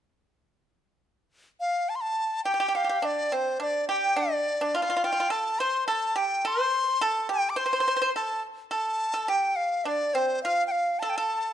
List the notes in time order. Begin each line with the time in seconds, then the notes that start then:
1.60 F5
1.89 A5
1.96 C6
2.01 A5
2.44 G4 G5
2.54 G4
2.60 G4
2.68 G4
2.75 G4 F5
2.84 G4
2.89 G4
3.02 D4 D5
3.32 C4 C5
3.60 D4 D5
3.89 G4 G5
4.16 D4 D5
4.61 D4
4.75 F4 F5
4.82 F4
4.90 F4
4.97 F4
5.04 F4 G5
5.12 F4
5.20 F4
5.30 A4 A5
5.59 C5 C6
5.87 A4 A5
6.16 G4 G5
6.45 C5 C6
7.01 A4 A5
7.29 G4 G5
7.50 D6
7.56 C5 C6
7.66 C5
7.73 C5
7.80 C5
7.88 C5
7.97 C5
8.02 C5
8.16 A4 A5
8.71 A4 A5
9.14 A4
9.28 G4 G5
9.56 F5
9.85 D4 D5
10.14 C4 C5
10.43 F4 F5
10.67 G5
10.71 F5
10.99 A4 A5
11.10 G5
11.16 A4 A5